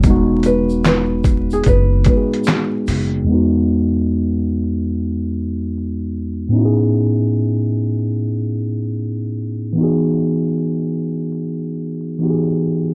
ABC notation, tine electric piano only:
X:1
M:4/4
L:1/8
Q:"Swing 16ths" 1/4=74
K:E
V:1 name="Tine electric piano"
[=G,^G,B,DF]4- [=G,^G,B,DF] [G,B,DFG]3 | [E,,G,B,DF]8 | [A,,B,CDEFG]8 | [E,B,DFG]6 [E,B,DF=G^G]2 |]